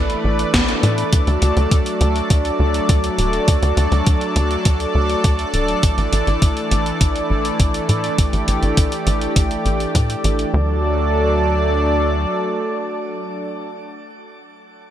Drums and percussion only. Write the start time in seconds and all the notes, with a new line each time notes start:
0.10 closed hi-hat
0.39 closed hi-hat
0.54 kick, snare, closed hi-hat
0.69 closed hi-hat
0.83 closed hi-hat
0.98 closed hi-hat
1.13 kick, closed hi-hat
1.27 closed hi-hat
1.42 closed hi-hat
1.57 closed hi-hat
1.71 kick, closed hi-hat
1.86 closed hi-hat
2.01 closed hi-hat
2.16 closed hi-hat
2.30 kick, closed hi-hat
2.45 closed hi-hat
2.74 closed hi-hat
2.89 kick, closed hi-hat
3.04 closed hi-hat
3.19 closed hi-hat
3.33 closed hi-hat
3.48 kick, closed hi-hat
3.63 closed hi-hat
3.77 closed hi-hat
3.92 closed hi-hat
4.07 kick, closed hi-hat
4.21 closed hi-hat
4.36 closed hi-hat
4.51 closed hi-hat
4.65 kick, closed hi-hat
4.80 closed hi-hat
5.10 closed hi-hat
5.24 kick, closed hi-hat
5.39 closed hi-hat
5.54 closed hi-hat
5.68 closed hi-hat
5.83 kick, closed hi-hat
5.98 closed hi-hat
6.13 closed hi-hat
6.27 closed hi-hat
6.42 kick, closed hi-hat
6.57 closed hi-hat
6.71 closed hi-hat
6.86 closed hi-hat
7.01 kick, closed hi-hat
7.16 closed hi-hat
7.45 closed hi-hat
7.60 kick, closed hi-hat
7.74 closed hi-hat
7.89 closed hi-hat
8.04 closed hi-hat
8.18 kick, closed hi-hat
8.33 closed hi-hat
8.48 closed hi-hat
8.63 closed hi-hat
8.77 kick, closed hi-hat
8.92 closed hi-hat
9.07 closed hi-hat
9.21 closed hi-hat
9.36 kick, closed hi-hat
9.51 closed hi-hat
9.66 closed hi-hat
9.80 closed hi-hat
9.95 kick, closed hi-hat
10.10 closed hi-hat
10.24 closed hi-hat
10.39 closed hi-hat